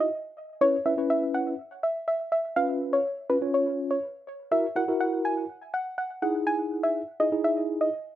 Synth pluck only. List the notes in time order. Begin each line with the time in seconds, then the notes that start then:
0.00 D#5
0.61 C#5
0.86 E5
1.10 E5
1.34 F#5
1.83 E5
2.08 E5
2.32 E5
2.56 F5
2.93 C#5
3.30 B4
3.54 C#5
3.91 C#5
4.52 E5
4.76 F#5
5.00 F#5
5.25 G#5
5.74 F#5
5.98 F#5
6.22 F#5
6.47 G#5
6.83 E5
7.20 D#5
7.44 E5
7.81 D#5